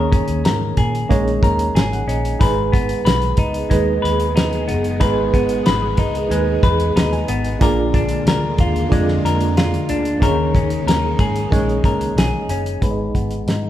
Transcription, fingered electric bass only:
0.00 0.19 D#2 loud
0.29 0.42 D#2 medium
0.45 0.71 G#2 medium
0.77 1.03 A#2 medium
1.11 1.37 A#1 medium
1.43 1.69 D#2 medium
1.75 2.01 G#1 loud
2.07 2.34 A#1 medium
2.41 2.93 G#1 medium
3.05 3.32 B1 medium
3.38 3.64 C#2 loud
3.71 3.97 D#2 loud
4.04 4.71 D#2 medium
4.69 5.01 F#1 medium
5.01 5.53 G#1 loud
5.67 5.93 G#1 medium
5.98 6.24 C#2 medium
6.31 6.57 D#2 loud
6.63 6.90 E2 medium
6.96 7.22 D#2 loud
7.28 7.55 G#1 loud
7.61 8.13 A#1 loud
8.26 8.52 D2 medium
8.58 8.84 D#2 loud
8.92 9.18 F2 loud
9.24 9.76 F2 medium
9.90 10.16 D2 loud
10.22 10.74 D#2 loud
10.86 11.13 D#2 medium
11.19 11.45 G#2 medium
11.52 11.78 A#1 loud
11.84 12.10 C#2 medium
12.16 12.29 B1 loud
12.49 12.75 F#1 loud
12.82 13.08 G#1 medium
13.15 13.41 G#1 medium
13.47 13.70 G#2 medium

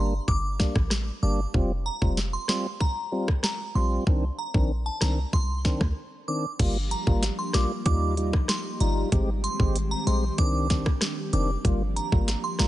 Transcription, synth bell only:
0.28 0.72 D6 medium
1.23 1.34 D6 medium
1.86 1.97 A#5 medium
2.33 2.45 C6 medium
2.49 2.60 C6 medium
2.81 3.25 A#5 medium
3.44 3.55 A#5 medium
3.75 3.87 C6 medium
4.38 4.50 A#5 medium
4.86 4.97 A5 medium
5.02 5.13 A#5 medium
5.33 5.78 C6 medium
6.28 6.39 D6 medium
6.91 7.02 A#5 medium
7.39 7.50 C6 medium
7.54 7.66 D6 medium
7.86 8.30 D6 loud
8.49 8.60 C6 medium
8.81 8.92 A#5 medium
9.44 9.55 C6 medium
9.91 10.02 A#5 medium
10.07 10.18 C6 medium
10.39 10.83 D6 loud
11.33 11.44 D6 medium
11.96 12.08 A#5 medium
12.44 12.55 C6 medium
12.60 12.68 A#5 medium

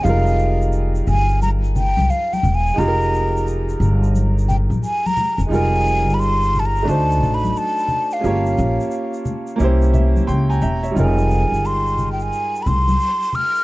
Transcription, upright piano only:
0.01 2.72 G#3 medium
0.01 2.73 D#4 medium
0.01 2.74 F4 medium
0.07 2.75 G3 medium
0.07 2.76 A#4 medium
2.74 5.45 G#3 medium
2.74 5.46 D#4 medium
2.74 5.47 F4 medium
2.80 5.48 G4 medium
2.80 2.88 G#4 medium
2.88 5.52 A#4 medium
5.47 6.82 G#3 medium
5.47 6.83 D#4 medium
5.51 6.85 G3 medium
5.51 6.84 F4 medium
5.51 6.86 A#4 medium
6.83 8.19 A3 medium
6.83 8.20 D4 medium
6.87 8.21 D#4 medium
6.87 8.22 F#4 medium
6.87 8.23 C5 medium
8.19 8.30 G#3 medium
8.19 9.56 C#4 medium
8.23 9.54 A#3 medium
8.23 9.57 F4 medium
8.23 9.58 G4 medium
8.23 9.59 C#5 medium
9.56 10.92 A#3 medium
9.56 10.93 C#4 medium
9.56 10.94 E4 medium
9.62 10.94 G4 medium
9.62 10.29 C5 medium
9.93 10.25 E5 medium
10.27 10.48 G5 medium
10.27 10.48 C6 medium
10.49 10.60 G5 medium
10.49 10.61 G#5 medium
10.49 10.60 A#5 medium
10.62 10.82 E5 medium
10.62 10.83 G5 medium
10.62 10.94 A#5 medium
10.83 11.16 C#5 soft
10.83 11.16 E5 medium
10.91 10.96 G3 medium
10.91 13.63 D#4 medium
10.91 13.64 F4 medium
10.97 13.64 G3 medium
10.97 13.63 G#3 medium
10.97 13.64 A#4 medium

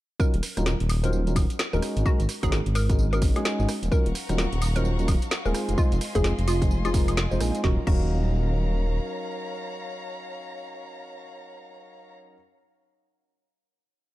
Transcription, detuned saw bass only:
0.34 0.41 D#1 medium
0.57 0.75 D#1 medium
0.80 1.46 D#1 medium
1.73 1.81 D#1 medium
1.96 2.04 G#1 medium
2.20 2.27 G#1 loud
2.43 2.61 G#1 medium
2.66 3.32 G#1 medium
3.59 3.67 G#1 medium
3.83 3.90 D#1 medium
4.06 4.13 D#1 loud
4.29 4.47 D#1 medium
4.52 5.18 D#1 medium
5.45 5.53 D#1 medium
5.69 5.76 F1 medium
5.92 5.99 F1 loud
6.15 6.33 F1 medium
6.38 6.93 F1 medium
6.94 7.27 F1 medium
7.31 7.39 F1 loud
7.41 7.52 A#1 medium
7.64 7.79 D#1 loud
7.87 8.99 D#1 loud

